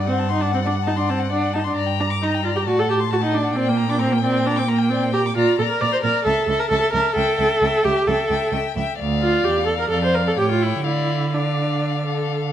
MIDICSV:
0, 0, Header, 1, 5, 480
1, 0, Start_track
1, 0, Key_signature, -2, "minor"
1, 0, Tempo, 449775
1, 1892, Time_signature, 4, 2, 24, 8
1, 5718, Key_signature, -1, "minor"
1, 7162, Tempo, 456274
1, 10522, Tempo, 477327
1, 13157, End_track
2, 0, Start_track
2, 0, Title_t, "Violin"
2, 0, Program_c, 0, 40
2, 0, Note_on_c, 0, 78, 43
2, 1862, Note_off_c, 0, 78, 0
2, 1883, Note_on_c, 0, 82, 38
2, 2850, Note_on_c, 0, 81, 38
2, 2866, Note_off_c, 0, 82, 0
2, 3801, Note_off_c, 0, 81, 0
2, 3822, Note_on_c, 0, 79, 47
2, 5692, Note_off_c, 0, 79, 0
2, 5736, Note_on_c, 0, 82, 48
2, 5956, Note_off_c, 0, 82, 0
2, 5962, Note_on_c, 0, 82, 39
2, 6189, Note_off_c, 0, 82, 0
2, 6196, Note_on_c, 0, 82, 41
2, 6435, Note_off_c, 0, 82, 0
2, 6443, Note_on_c, 0, 82, 40
2, 6666, Note_off_c, 0, 82, 0
2, 6672, Note_on_c, 0, 81, 44
2, 6912, Note_off_c, 0, 81, 0
2, 6927, Note_on_c, 0, 81, 43
2, 7159, Note_off_c, 0, 81, 0
2, 7166, Note_on_c, 0, 81, 47
2, 7398, Note_off_c, 0, 81, 0
2, 7416, Note_on_c, 0, 81, 40
2, 7634, Note_off_c, 0, 81, 0
2, 7640, Note_on_c, 0, 79, 51
2, 7874, Note_off_c, 0, 79, 0
2, 7881, Note_on_c, 0, 79, 42
2, 8106, Note_off_c, 0, 79, 0
2, 8112, Note_on_c, 0, 79, 42
2, 8337, Note_off_c, 0, 79, 0
2, 8343, Note_on_c, 0, 79, 39
2, 8588, Note_off_c, 0, 79, 0
2, 8596, Note_on_c, 0, 79, 43
2, 8831, Note_off_c, 0, 79, 0
2, 8837, Note_on_c, 0, 79, 46
2, 9069, Note_off_c, 0, 79, 0
2, 9075, Note_on_c, 0, 79, 45
2, 9315, Note_off_c, 0, 79, 0
2, 9323, Note_on_c, 0, 79, 45
2, 9560, Note_off_c, 0, 79, 0
2, 9571, Note_on_c, 0, 77, 51
2, 10484, Note_off_c, 0, 77, 0
2, 10534, Note_on_c, 0, 77, 42
2, 11001, Note_on_c, 0, 79, 46
2, 11016, Note_off_c, 0, 77, 0
2, 11466, Note_on_c, 0, 77, 40
2, 11481, Note_off_c, 0, 79, 0
2, 11948, Note_off_c, 0, 77, 0
2, 11954, Note_on_c, 0, 77, 41
2, 13157, Note_off_c, 0, 77, 0
2, 13157, End_track
3, 0, Start_track
3, 0, Title_t, "Violin"
3, 0, Program_c, 1, 40
3, 79, Note_on_c, 1, 78, 33
3, 202, Note_on_c, 1, 81, 35
3, 218, Note_off_c, 1, 78, 0
3, 309, Note_on_c, 1, 84, 38
3, 325, Note_off_c, 1, 81, 0
3, 435, Note_on_c, 1, 81, 35
3, 451, Note_off_c, 1, 84, 0
3, 552, Note_on_c, 1, 78, 35
3, 568, Note_off_c, 1, 81, 0
3, 674, Note_on_c, 1, 74, 38
3, 690, Note_off_c, 1, 78, 0
3, 804, Note_on_c, 1, 78, 37
3, 820, Note_off_c, 1, 74, 0
3, 901, Note_off_c, 1, 78, 0
3, 908, Note_on_c, 1, 81, 41
3, 1029, Note_on_c, 1, 84, 39
3, 1045, Note_off_c, 1, 81, 0
3, 1164, Note_on_c, 1, 81, 39
3, 1180, Note_off_c, 1, 84, 0
3, 1280, Note_on_c, 1, 78, 38
3, 1296, Note_off_c, 1, 81, 0
3, 1392, Note_on_c, 1, 74, 35
3, 1408, Note_off_c, 1, 78, 0
3, 1502, Note_on_c, 1, 78, 37
3, 1518, Note_off_c, 1, 74, 0
3, 1635, Note_on_c, 1, 81, 35
3, 1651, Note_off_c, 1, 78, 0
3, 1749, Note_on_c, 1, 84, 38
3, 1765, Note_off_c, 1, 81, 0
3, 1876, Note_off_c, 1, 84, 0
3, 1882, Note_on_c, 1, 74, 40
3, 1993, Note_on_c, 1, 79, 35
3, 2009, Note_off_c, 1, 74, 0
3, 2137, Note_on_c, 1, 82, 37
3, 2153, Note_off_c, 1, 79, 0
3, 2243, Note_on_c, 1, 86, 40
3, 2259, Note_off_c, 1, 82, 0
3, 2381, Note_on_c, 1, 82, 39
3, 2397, Note_off_c, 1, 86, 0
3, 2502, Note_on_c, 1, 79, 35
3, 2518, Note_off_c, 1, 82, 0
3, 2605, Note_on_c, 1, 74, 38
3, 2621, Note_off_c, 1, 79, 0
3, 2729, Note_on_c, 1, 79, 36
3, 2745, Note_off_c, 1, 74, 0
3, 2826, Note_off_c, 1, 79, 0
3, 2833, Note_on_c, 1, 74, 40
3, 2954, Note_on_c, 1, 78, 40
3, 2970, Note_off_c, 1, 74, 0
3, 3083, Note_on_c, 1, 81, 38
3, 3099, Note_off_c, 1, 78, 0
3, 3198, Note_on_c, 1, 84, 37
3, 3214, Note_off_c, 1, 81, 0
3, 3312, Note_on_c, 1, 81, 40
3, 3328, Note_off_c, 1, 84, 0
3, 3429, Note_on_c, 1, 78, 36
3, 3445, Note_off_c, 1, 81, 0
3, 3532, Note_on_c, 1, 74, 40
3, 3548, Note_off_c, 1, 78, 0
3, 3668, Note_on_c, 1, 78, 37
3, 3684, Note_off_c, 1, 74, 0
3, 3789, Note_off_c, 1, 78, 0
3, 3796, Note_on_c, 1, 74, 45
3, 3912, Note_on_c, 1, 79, 37
3, 3928, Note_off_c, 1, 74, 0
3, 4025, Note_on_c, 1, 82, 37
3, 4041, Note_off_c, 1, 79, 0
3, 4156, Note_on_c, 1, 86, 39
3, 4172, Note_off_c, 1, 82, 0
3, 4261, Note_on_c, 1, 82, 41
3, 4277, Note_off_c, 1, 86, 0
3, 4404, Note_on_c, 1, 79, 39
3, 4420, Note_off_c, 1, 82, 0
3, 4522, Note_on_c, 1, 74, 43
3, 4538, Note_off_c, 1, 79, 0
3, 4636, Note_on_c, 1, 79, 40
3, 4652, Note_off_c, 1, 74, 0
3, 4741, Note_off_c, 1, 79, 0
3, 4747, Note_on_c, 1, 82, 48
3, 4873, Note_on_c, 1, 86, 46
3, 4889, Note_off_c, 1, 82, 0
3, 5001, Note_on_c, 1, 82, 43
3, 5017, Note_off_c, 1, 86, 0
3, 5111, Note_on_c, 1, 79, 43
3, 5127, Note_off_c, 1, 82, 0
3, 5242, Note_on_c, 1, 74, 41
3, 5258, Note_off_c, 1, 79, 0
3, 5369, Note_on_c, 1, 79, 36
3, 5385, Note_off_c, 1, 74, 0
3, 5480, Note_on_c, 1, 82, 41
3, 5496, Note_off_c, 1, 79, 0
3, 5614, Note_on_c, 1, 86, 44
3, 5630, Note_off_c, 1, 82, 0
3, 5720, Note_off_c, 1, 86, 0
3, 5726, Note_on_c, 1, 74, 45
3, 5961, Note_off_c, 1, 74, 0
3, 5972, Note_on_c, 1, 74, 39
3, 6204, Note_off_c, 1, 74, 0
3, 6219, Note_on_c, 1, 74, 42
3, 6430, Note_off_c, 1, 74, 0
3, 6436, Note_on_c, 1, 74, 43
3, 6674, Note_off_c, 1, 74, 0
3, 6688, Note_on_c, 1, 76, 46
3, 6920, Note_off_c, 1, 76, 0
3, 6940, Note_on_c, 1, 76, 42
3, 7150, Note_off_c, 1, 76, 0
3, 7156, Note_on_c, 1, 76, 40
3, 7381, Note_off_c, 1, 76, 0
3, 7387, Note_on_c, 1, 76, 44
3, 7612, Note_off_c, 1, 76, 0
3, 7618, Note_on_c, 1, 76, 49
3, 7866, Note_off_c, 1, 76, 0
3, 7871, Note_on_c, 1, 76, 46
3, 8112, Note_off_c, 1, 76, 0
3, 8124, Note_on_c, 1, 76, 44
3, 8351, Note_off_c, 1, 76, 0
3, 8357, Note_on_c, 1, 76, 42
3, 8595, Note_off_c, 1, 76, 0
3, 8603, Note_on_c, 1, 76, 51
3, 8831, Note_off_c, 1, 76, 0
3, 8837, Note_on_c, 1, 76, 44
3, 9074, Note_off_c, 1, 76, 0
3, 9081, Note_on_c, 1, 76, 42
3, 9318, Note_off_c, 1, 76, 0
3, 9327, Note_on_c, 1, 76, 41
3, 9558, Note_off_c, 1, 76, 0
3, 9564, Note_on_c, 1, 74, 46
3, 10481, Note_off_c, 1, 74, 0
3, 10523, Note_on_c, 1, 74, 46
3, 10979, Note_on_c, 1, 73, 42
3, 10994, Note_off_c, 1, 74, 0
3, 11466, Note_off_c, 1, 73, 0
3, 11481, Note_on_c, 1, 74, 41
3, 11950, Note_off_c, 1, 74, 0
3, 11956, Note_on_c, 1, 74, 42
3, 12665, Note_off_c, 1, 74, 0
3, 12691, Note_on_c, 1, 69, 52
3, 13134, Note_off_c, 1, 69, 0
3, 13157, End_track
4, 0, Start_track
4, 0, Title_t, "Viola"
4, 0, Program_c, 2, 41
4, 77, Note_on_c, 2, 60, 44
4, 321, Note_off_c, 2, 60, 0
4, 343, Note_on_c, 2, 63, 47
4, 444, Note_on_c, 2, 62, 47
4, 460, Note_off_c, 2, 63, 0
4, 569, Note_off_c, 2, 62, 0
4, 579, Note_on_c, 2, 60, 44
4, 626, Note_off_c, 2, 60, 0
4, 701, Note_on_c, 2, 62, 52
4, 787, Note_off_c, 2, 62, 0
4, 930, Note_on_c, 2, 63, 53
4, 979, Note_off_c, 2, 63, 0
4, 1048, Note_on_c, 2, 62, 45
4, 1174, Note_on_c, 2, 60, 46
4, 1190, Note_off_c, 2, 62, 0
4, 1401, Note_off_c, 2, 60, 0
4, 1407, Note_on_c, 2, 62, 53
4, 1645, Note_off_c, 2, 62, 0
4, 1653, Note_on_c, 2, 63, 43
4, 1701, Note_off_c, 2, 63, 0
4, 1786, Note_on_c, 2, 62, 41
4, 1896, Note_off_c, 2, 62, 0
4, 2135, Note_on_c, 2, 62, 47
4, 2221, Note_off_c, 2, 62, 0
4, 2371, Note_on_c, 2, 63, 55
4, 2600, Note_off_c, 2, 63, 0
4, 2607, Note_on_c, 2, 65, 52
4, 2654, Note_off_c, 2, 65, 0
4, 2731, Note_on_c, 2, 67, 51
4, 2777, Note_off_c, 2, 67, 0
4, 2849, Note_on_c, 2, 66, 57
4, 2983, Note_on_c, 2, 69, 52
4, 2999, Note_off_c, 2, 66, 0
4, 3093, Note_off_c, 2, 69, 0
4, 3098, Note_on_c, 2, 67, 53
4, 3183, Note_off_c, 2, 67, 0
4, 3338, Note_on_c, 2, 66, 56
4, 3383, Note_off_c, 2, 66, 0
4, 3454, Note_on_c, 2, 63, 54
4, 3571, Note_on_c, 2, 62, 47
4, 3587, Note_off_c, 2, 63, 0
4, 3799, Note_on_c, 2, 60, 56
4, 3815, Note_off_c, 2, 62, 0
4, 3932, Note_on_c, 2, 58, 51
4, 3948, Note_off_c, 2, 60, 0
4, 4162, Note_off_c, 2, 58, 0
4, 4169, Note_on_c, 2, 62, 53
4, 4271, Note_off_c, 2, 62, 0
4, 4278, Note_on_c, 2, 60, 54
4, 4403, Note_on_c, 2, 58, 49
4, 4419, Note_off_c, 2, 60, 0
4, 4507, Note_off_c, 2, 58, 0
4, 4513, Note_on_c, 2, 60, 59
4, 4759, Note_on_c, 2, 62, 62
4, 4775, Note_off_c, 2, 60, 0
4, 4893, Note_on_c, 2, 60, 51
4, 4909, Note_off_c, 2, 62, 0
4, 4995, Note_off_c, 2, 60, 0
4, 5001, Note_on_c, 2, 58, 53
4, 5223, Note_on_c, 2, 60, 57
4, 5239, Note_off_c, 2, 58, 0
4, 5469, Note_off_c, 2, 60, 0
4, 5474, Note_on_c, 2, 67, 57
4, 5559, Note_off_c, 2, 67, 0
4, 5708, Note_on_c, 2, 65, 64
4, 5951, Note_off_c, 2, 65, 0
4, 5965, Note_on_c, 2, 69, 59
4, 6012, Note_off_c, 2, 69, 0
4, 6079, Note_on_c, 2, 70, 58
4, 6199, Note_on_c, 2, 74, 68
4, 6215, Note_off_c, 2, 70, 0
4, 6316, Note_off_c, 2, 74, 0
4, 6323, Note_on_c, 2, 72, 55
4, 6371, Note_off_c, 2, 72, 0
4, 6430, Note_on_c, 2, 70, 60
4, 6656, Note_off_c, 2, 70, 0
4, 6663, Note_on_c, 2, 69, 61
4, 6907, Note_off_c, 2, 69, 0
4, 6912, Note_on_c, 2, 69, 66
4, 7037, Note_on_c, 2, 70, 65
4, 7053, Note_off_c, 2, 69, 0
4, 7141, Note_off_c, 2, 70, 0
4, 7148, Note_on_c, 2, 69, 70
4, 7258, Note_off_c, 2, 69, 0
4, 7264, Note_on_c, 2, 69, 67
4, 7380, Note_off_c, 2, 69, 0
4, 7387, Note_on_c, 2, 70, 69
4, 7618, Note_off_c, 2, 70, 0
4, 7624, Note_on_c, 2, 69, 71
4, 8358, Note_on_c, 2, 67, 67
4, 8374, Note_off_c, 2, 69, 0
4, 8595, Note_on_c, 2, 69, 63
4, 8610, Note_off_c, 2, 67, 0
4, 9077, Note_off_c, 2, 69, 0
4, 9798, Note_on_c, 2, 65, 60
4, 10038, Note_on_c, 2, 67, 65
4, 10054, Note_off_c, 2, 65, 0
4, 10265, Note_off_c, 2, 67, 0
4, 10271, Note_on_c, 2, 69, 57
4, 10394, Note_off_c, 2, 69, 0
4, 10409, Note_on_c, 2, 70, 60
4, 10513, Note_off_c, 2, 70, 0
4, 10519, Note_on_c, 2, 69, 61
4, 10635, Note_off_c, 2, 69, 0
4, 10656, Note_on_c, 2, 72, 57
4, 10764, Note_on_c, 2, 70, 46
4, 10779, Note_off_c, 2, 72, 0
4, 10878, Note_off_c, 2, 70, 0
4, 10892, Note_on_c, 2, 69, 62
4, 10936, Note_off_c, 2, 69, 0
4, 11004, Note_on_c, 2, 67, 61
4, 11115, Note_off_c, 2, 67, 0
4, 11134, Note_on_c, 2, 65, 53
4, 11246, Note_on_c, 2, 64, 49
4, 11261, Note_off_c, 2, 65, 0
4, 11472, Note_off_c, 2, 64, 0
4, 11478, Note_on_c, 2, 64, 56
4, 11964, Note_on_c, 2, 62, 45
4, 11979, Note_off_c, 2, 64, 0
4, 12924, Note_off_c, 2, 62, 0
4, 13157, End_track
5, 0, Start_track
5, 0, Title_t, "Cello"
5, 0, Program_c, 3, 42
5, 0, Note_on_c, 3, 43, 42
5, 1852, Note_off_c, 3, 43, 0
5, 1888, Note_on_c, 3, 43, 44
5, 2843, Note_on_c, 3, 45, 42
5, 2859, Note_off_c, 3, 43, 0
5, 3798, Note_off_c, 3, 45, 0
5, 3808, Note_on_c, 3, 46, 45
5, 5685, Note_off_c, 3, 46, 0
5, 5723, Note_on_c, 3, 46, 48
5, 5808, Note_off_c, 3, 46, 0
5, 5963, Note_on_c, 3, 46, 50
5, 6049, Note_off_c, 3, 46, 0
5, 6202, Note_on_c, 3, 46, 45
5, 6287, Note_off_c, 3, 46, 0
5, 6441, Note_on_c, 3, 46, 46
5, 6527, Note_off_c, 3, 46, 0
5, 6678, Note_on_c, 3, 37, 53
5, 6764, Note_off_c, 3, 37, 0
5, 6911, Note_on_c, 3, 37, 48
5, 6996, Note_off_c, 3, 37, 0
5, 7165, Note_on_c, 3, 37, 50
5, 7249, Note_off_c, 3, 37, 0
5, 7394, Note_on_c, 3, 37, 46
5, 7479, Note_off_c, 3, 37, 0
5, 7642, Note_on_c, 3, 37, 51
5, 7726, Note_off_c, 3, 37, 0
5, 7875, Note_on_c, 3, 37, 51
5, 7959, Note_off_c, 3, 37, 0
5, 8120, Note_on_c, 3, 37, 50
5, 8205, Note_off_c, 3, 37, 0
5, 8356, Note_on_c, 3, 37, 50
5, 8440, Note_off_c, 3, 37, 0
5, 8596, Note_on_c, 3, 37, 56
5, 8680, Note_off_c, 3, 37, 0
5, 8834, Note_on_c, 3, 37, 46
5, 8918, Note_off_c, 3, 37, 0
5, 9072, Note_on_c, 3, 37, 47
5, 9156, Note_off_c, 3, 37, 0
5, 9316, Note_on_c, 3, 37, 46
5, 9400, Note_off_c, 3, 37, 0
5, 9557, Note_on_c, 3, 38, 52
5, 10006, Note_off_c, 3, 38, 0
5, 10033, Note_on_c, 3, 40, 44
5, 10508, Note_off_c, 3, 40, 0
5, 10516, Note_on_c, 3, 41, 48
5, 10980, Note_off_c, 3, 41, 0
5, 10991, Note_on_c, 3, 45, 46
5, 11457, Note_off_c, 3, 45, 0
5, 11463, Note_on_c, 3, 50, 41
5, 13152, Note_off_c, 3, 50, 0
5, 13157, End_track
0, 0, End_of_file